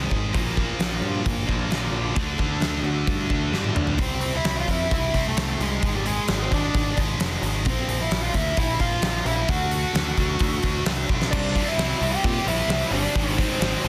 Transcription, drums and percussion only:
0.11 kick medium
0.34 kick loud
0.34 open hi-hat soft
0.57 kick medium
0.80 snare loud
0.80 open hi-hat medium
1.26 kick loud
1.26 open hi-hat medium
1.49 kick medium
1.71 snare loud
1.71 open hi-hat soft
2.16 kick loud
2.16 open hi-hat soft
2.39 kick medium
2.61 snare loud
2.61 open hi-hat soft
3.07 kick loud
3.07 open hi-hat soft
3.30 kick medium
3.54 snare medium
3.64 high tom medium
3.76 mid tom loud
3.87 floor tom medium
3.98 kick loud
3.98 open hi-hat medium
4.21 open hi-hat medium
4.44 snare loud
4.44 open hi-hat medium
4.68 kick medium
4.68 open hi-hat medium
4.91 kick loud
4.91 open hi-hat medium
5.14 kick medium
5.14 open hi-hat medium
5.37 snare loud
5.37 open hi-hat medium
5.61 open hi-hat medium
5.82 kick loud
5.82 open hi-hat medium
6.06 open hi-hat medium
6.28 snare loud
6.28 open hi-hat medium
6.52 kick medium
6.52 open hi-hat soft
6.74 kick loud
6.74 open hi-hat medium
6.97 kick medium
6.97 open hi-hat medium
7.20 snare loud
7.20 open hi-hat medium
7.43 open hi-hat medium
7.65 kick loud
7.65 open hi-hat medium
7.89 open hi-hat medium
8.11 snare loud
8.11 open hi-hat medium
8.34 kick medium
8.34 open hi-hat medium
8.57 kick loud
8.57 open hi-hat medium
8.79 kick medium
8.79 open hi-hat medium
9.02 snare loud
9.02 open hi-hat medium
9.26 open hi-hat medium
9.48 kick loud
9.48 open hi-hat medium
9.71 open hi-hat medium
9.95 snare loud
9.95 open hi-hat medium
10.17 kick medium
10.17 open hi-hat soft
10.39 kick loud
10.39 open hi-hat medium
10.63 kick medium
10.63 open hi-hat medium
10.86 snare loud
10.86 open hi-hat medium
11.09 kick medium
11.22 snare medium
11.33 kick loud
11.33 crash loud
11.56 kick medium
11.56 open hi-hat medium
11.79 snare loud
11.79 open hi-hat medium
12.02 open hi-hat medium
12.24 kick loud
12.24 open hi-hat medium
12.48 open hi-hat medium
12.70 snare loud
12.93 open hi-hat medium
13.05 snare soft
13.16 kick loud
13.16 open hi-hat medium
13.38 kick medium
13.38 open hi-hat medium
13.61 snare loud
13.61 open hi-hat medium
13.84 open hi-hat medium

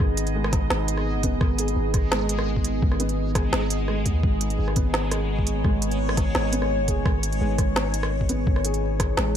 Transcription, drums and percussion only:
0.17 closed hi-hat medium
0.27 closed hi-hat soft
0.44 cross-stick medium
0.53 kick loud
0.53 snare soft
0.53 closed hi-hat medium
0.70 snare loud
0.88 closed hi-hat medium
0.97 cross-stick medium
1.23 kick medium
1.23 closed hi-hat medium
1.41 kick loud
1.41 cross-stick medium
1.58 closed hi-hat medium
1.68 closed hi-hat soft
1.94 kick loud
1.94 cross-stick medium
1.94 closed hi-hat medium
2.12 snare loud
2.29 closed hi-hat medium
2.39 cross-stick medium
2.56 kick medium
2.64 closed hi-hat medium
2.82 kick loud
2.92 cross-stick medium
3.00 closed hi-hat medium
3.09 closed hi-hat soft
3.35 kick loud
3.35 cross-stick medium
3.35 snare soft
3.35 closed hi-hat medium
3.53 snare loud
3.70 closed hi-hat medium
3.88 cross-stick soft
4.06 kick medium
4.06 closed hi-hat medium
4.23 kick loud
4.41 closed hi-hat medium
4.50 closed hi-hat soft
4.68 cross-stick medium
4.76 kick loud
4.76 closed hi-hat medium
4.94 snare loud
5.11 cross-stick medium
5.11 closed hi-hat medium
5.39 kick medium
5.47 closed hi-hat medium
5.64 kick loud
5.64 cross-stick medium
5.82 closed hi-hat medium
5.91 closed hi-hat soft
6.09 cross-stick medium
6.17 kick loud
6.17 snare soft
6.17 closed hi-hat medium
6.35 snare loud
6.53 closed hi-hat medium
6.62 cross-stick medium
6.88 kick medium
6.88 closed hi-hat medium
7.06 kick loud
7.06 cross-stick medium
7.23 closed hi-hat medium
7.33 closed hi-hat soft
7.58 kick loud
7.58 cross-stick medium
7.58 closed hi-hat medium
7.76 snare loud
7.94 closed hi-hat medium
8.03 cross-stick medium
8.21 kick medium
8.29 closed hi-hat medium
8.47 kick loud
8.56 cross-stick medium
8.65 closed hi-hat medium
8.74 closed hi-hat soft
9.00 kick loud
9.00 cross-stick medium
9.00 snare soft
9.00 closed hi-hat medium
9.17 snare loud

